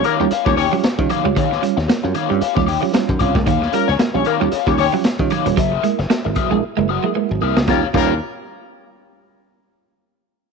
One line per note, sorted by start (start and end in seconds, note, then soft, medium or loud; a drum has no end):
0.04 0.21 D#3 medium
0.04 0.13 A#3 medium
0.04 0.24 G4 medium
0.04 0.13 A#4 medium
0.04 0.20 C#5 loud
0.04 0.18 F5 medium
0.04 muted clean electric guitar stroke soft
0.04 closed hi-hat medium
0.20 0.29 D#2 medium
0.20 0.28 G3 medium
0.20 0.33 G3 medium
0.20 0.33 C#4 medium
0.20 0.33 F4 medium
0.20 muted overdriven electric guitar stroke medium
0.31 0.50 G4 medium
0.31 0.46 C#5 medium
0.31 0.45 F5 medium
0.31 muted slap bass stroke medium
0.31 closed hi-hat medium
0.46 0.66 D#2 medium
0.46 0.59 G3 medium
0.46 0.54 G3 medium
0.46 0.55 C#4 medium
0.46 0.59 C#4 medium
0.46 0.59 F4 medium
0.46 0.55 C#5 medium
0.46 muted overdriven electric guitar stroke medium
0.46 kick medium
0.46 snare soft
0.57 0.74 D#3 medium
0.57 0.66 C#4 medium
0.57 0.73 G4 medium
0.57 0.66 C#5 medium
0.57 0.72 C#5 medium
0.57 0.72 G5 medium
0.57 muted clean electric guitar stroke soft
0.57 open hi-hat medium
0.72 0.80 F#3 medium
0.72 0.85 G3 medium
0.72 0.85 C#4 medium
0.72 0.85 F4 medium
0.72 muted overdriven electric guitar stroke medium
0.84 muted overdriven electric guitar stroke soft
0.84 muted clean electric guitar stroke soft
0.84 snare loud
0.84 closed hi-hat loud
0.98 1.07 D#3 loud
0.98 1.11 G3 medium
0.98 1.11 C#4 medium
0.98 1.12 F4 medium
0.98 kick loud
1.10 1.26 D#3 medium
1.10 1.20 F#3 medium
1.10 1.26 G4 medium
1.10 1.25 C#5 medium
1.10 1.24 F5 medium
1.10 closed hi-hat medium
1.25 1.37 C#2 medium
1.25 1.38 G3 medium
1.25 1.33 G3 medium
1.25 1.38 C#4 medium
1.25 1.38 F4 medium
1.25 muted overdriven electric guitar stroke soft
1.36 1.56 D#2 loud
1.36 1.46 D#3 medium
1.36 1.52 D#3 medium
1.36 1.61 G4 medium
1.36 1.61 C#5 medium
1.36 1.61 F5 medium
1.36 kick loud
1.36 closed hi-hat medium
1.51 muted clean electric guitar stroke soft
1.51 snare soft
1.62 1.73 G3 medium
1.62 1.78 C#4 medium
1.62 1.78 F4 medium
1.62 closed hi-hat medium
1.77 1.86 D#2 medium
1.77 muted overdriven electric guitar stroke medium
1.77 snare soft
1.88 1.99 A#3 medium
1.88 muted overdriven electric guitar stroke soft
1.88 snare loud
1.88 closed hi-hat medium
2.03 2.13 F#2 medium
2.03 2.17 G3 medium
2.03 2.17 C#4 medium
2.03 2.17 F4 medium
2.03 muted overdriven electric guitar stroke soft
2.14 2.31 D#3 medium
2.14 2.34 G4 medium
2.14 2.29 C#5 loud
2.14 2.28 F5 medium
2.14 muted clean electric guitar stroke soft
2.14 closed hi-hat medium
2.29 2.39 G2 medium
2.29 2.43 G3 medium
2.29 2.38 G3 medium
2.29 2.43 C#4 medium
2.29 2.43 F4 medium
2.29 muted overdriven electric guitar stroke medium
2.41 2.60 G4 medium
2.41 2.56 C#5 medium
2.41 2.55 F5 medium
2.41 muted slap bass stroke medium
2.41 closed hi-hat medium
2.56 2.76 D#2 medium
2.56 2.69 G3 medium
2.56 2.64 G3 medium
2.56 2.69 C#4 medium
2.56 2.69 F4 medium
2.56 muted overdriven electric guitar stroke soft
2.56 kick medium
2.56 snare soft
2.67 2.83 D#3 medium
2.67 2.83 G4 medium
2.67 2.81 C#5 medium
2.67 2.81 G5 medium
2.67 muted clean electric guitar stroke soft
2.67 open hi-hat medium
2.81 2.91 F#3 medium
2.81 2.95 G3 medium
2.81 2.92 C#4 medium
2.81 2.93 F4 medium
2.81 muted overdriven electric guitar stroke soft
2.93 3.05 G3 medium
2.93 3.10 C#4 medium
2.93 3.10 F4 medium
2.93 muted overdriven electric guitar stroke soft
2.93 snare loud
2.93 closed hi-hat medium
3.09 3.18 F#2 medium
3.09 3.22 D#3 medium
3.09 kick loud
3.19 3.32 C2 medium
3.19 3.36 C#4 medium
3.19 3.36 F4 medium
3.19 3.35 G4 medium
3.19 3.35 C#5 medium
3.19 3.34 F5 medium
3.19 muted clean electric guitar stroke soft
3.19 kick loud
3.19 closed hi-hat medium
3.35 3.47 C#2 medium
3.35 3.44 A#3 medium
3.35 muted overdriven electric guitar stroke soft
3.35 kick loud
3.35 snare soft
3.46 3.67 D#2 medium
3.46 3.63 D#3 medium
3.46 3.57 D#3 medium
3.46 3.71 G4 medium
3.46 3.71 C#5 medium
3.46 3.71 F5 loud
3.46 kick loud
3.46 closed hi-hat medium
3.62 muted clean electric guitar stroke soft
3.62 snare soft
3.73 3.84 G3 medium
3.73 3.85 A#3 medium
3.73 3.89 C#4 medium
3.73 3.89 F4 medium
3.73 3.85 A#4 loud
3.73 closed hi-hat medium
3.88 3.97 C#2 medium
3.88 3.95 C#4 medium
3.88 3.95 C#5 medium
3.88 muted overdriven electric guitar stroke soft
3.88 snare soft
3.99 4.10 A#3 medium
3.99 muted overdriven electric guitar stroke soft
3.99 snare loud
3.99 closed hi-hat medium
4.14 4.23 A#1 medium
4.14 4.27 G3 medium
4.14 4.27 C#4 medium
4.14 4.23 C#4 medium
4.14 4.27 F4 medium
4.14 4.23 C#5 medium
4.14 muted overdriven electric guitar stroke soft
4.25 4.42 D#3 medium
4.25 4.35 A#3 medium
4.25 4.45 G4 medium
4.25 4.35 A#4 medium
4.25 4.41 C#5 medium
4.25 4.40 F5 loud
4.25 muted clean electric guitar stroke soft
4.25 closed hi-hat medium
4.40 4.50 D#2 medium
4.40 4.53 G3 medium
4.40 4.49 G3 medium
4.40 4.53 C#4 medium
4.40 4.54 F4 medium
4.40 muted overdriven electric guitar stroke medium
4.52 4.71 G4 medium
4.52 4.67 C#5 medium
4.52 4.66 F5 medium
4.52 muted slap bass stroke medium
4.52 closed hi-hat medium
4.66 4.87 D#2 medium
4.66 4.80 G3 medium
4.66 4.75 G3 medium
4.66 4.80 C#4 medium
4.66 4.76 C#4 medium
4.66 4.80 F4 medium
4.66 4.76 C#5 medium
4.66 muted overdriven electric guitar stroke soft
4.66 kick medium
4.66 snare soft
4.78 4.94 D#3 medium
4.78 4.87 C#4 medium
4.78 4.94 G4 medium
4.78 4.87 C#5 medium
4.78 4.93 C#5 medium
4.78 4.93 G5 medium
4.78 muted clean electric guitar stroke soft
4.78 open hi-hat medium
4.93 5.01 F#3 medium
4.93 5.06 G3 medium
4.93 5.06 C#4 medium
4.93 5.06 F4 medium
4.93 muted overdriven electric guitar stroke medium
5.04 muted overdriven electric guitar stroke soft
5.04 muted clean electric guitar stroke soft
5.04 snare loud
5.04 closed hi-hat loud
5.19 5.28 D#3 medium
5.19 5.32 G3 medium
5.19 5.33 C#4 medium
5.19 5.33 F4 medium
5.19 kick medium
5.30 5.47 D#3 medium
5.30 5.42 F#3 medium
5.30 5.46 G4 medium
5.30 5.46 C#5 medium
5.30 5.45 F5 medium
5.30 closed hi-hat medium
5.45 5.55 D#1 medium
5.45 5.59 G3 medium
5.45 5.54 G3 medium
5.45 5.59 C#4 medium
5.45 5.59 F4 medium
5.45 muted overdriven electric guitar stroke soft
5.45 closed hi-hat medium
5.57 5.77 F#1 medium
5.57 5.67 F#3 medium
5.57 5.73 F#3 medium
5.57 5.82 G#4 medium
5.57 5.82 A#4 medium
5.57 5.83 E5 medium
5.57 kick medium
5.57 closed hi-hat medium
5.72 muted clean electric guitar stroke soft
5.83 5.94 G#3 medium
5.83 5.99 A#3 medium
5.83 6.00 E4 medium
5.83 closed hi-hat medium
5.99 6.07 F#1 medium
5.99 muted overdriven electric guitar stroke soft
5.99 snare soft
6.10 6.20 A#3 medium
6.10 muted overdriven electric guitar stroke soft
6.10 snare loud
6.10 closed hi-hat medium
6.24 6.34 G#1 medium
6.24 6.38 G#3 medium
6.24 6.38 A#3 medium
6.24 6.38 E4 medium
6.24 muted overdriven electric guitar stroke soft
6.35 6.52 F#3 medium
6.35 6.55 G#4 medium
6.35 6.51 A#4 medium
6.35 6.50 E5 medium
6.35 muted clean electric guitar stroke soft
6.35 kick medium
6.35 closed hi-hat medium
6.51 6.60 A#1 medium
6.51 6.59 G#3 medium
6.51 6.64 G#3 medium
6.51 6.64 A#3 medium
6.51 6.64 E4 medium
6.51 muted overdriven electric guitar stroke soft
6.63 muted slap bass stroke soft
6.77 6.97 F#1 medium
6.77 6.85 G#3 medium
6.77 6.90 G#3 medium
6.77 6.91 A#3 medium
6.77 6.91 E4 medium
6.77 muted overdriven electric guitar stroke medium
6.89 7.05 F#3 medium
6.89 7.08 G#4 medium
6.89 7.04 A#4 medium
6.89 7.04 F#5 medium
6.89 muted clean electric guitar stroke soft
7.03 7.12 F#3 medium
7.03 7.16 G#3 medium
7.03 7.14 A#3 medium
7.03 7.14 E4 medium
7.03 muted overdriven electric guitar stroke soft
7.15 7.25 G#3 medium
7.15 7.31 A#3 medium
7.15 7.31 E4 medium
7.15 muted overdriven electric guitar stroke soft
7.29 7.39 G#1 medium
7.29 7.43 F#3 medium
7.41 7.53 C2 medium
7.41 7.57 A#3 medium
7.41 7.57 E4 medium
7.41 7.57 G#4 medium
7.41 7.57 A#4 medium
7.41 7.56 E5 medium
7.41 muted clean electric guitar stroke soft
7.57 7.66 C#2 medium
7.57 7.64 A#3 medium
7.57 muted overdriven electric guitar stroke soft
7.57 snare loud
7.67 7.84 D#2 medium
7.67 7.83 G3 medium
7.67 7.80 G3 medium
7.67 7.78 A#3 medium
7.67 7.83 C#4 medium
7.67 7.80 F4 loud
7.67 7.84 F4 medium
7.67 7.85 G4 medium
7.67 7.80 A#4 loud
7.67 7.85 C#5 medium
7.67 7.86 F5 medium
7.67 kick loud
7.67 snare medium
7.93 8.19 D#2 loud
7.93 8.14 G3 medium
7.93 8.12 G3 medium
7.93 8.10 A#3 medium
7.93 8.14 C#4 medium
7.93 8.12 F4 medium
7.93 8.14 F4 loud
7.93 8.11 G4 medium
7.93 8.12 A#4 loud
7.93 8.12 C#5 medium
7.93 8.12 F5 loud
7.93 kick loud
7.93 crash medium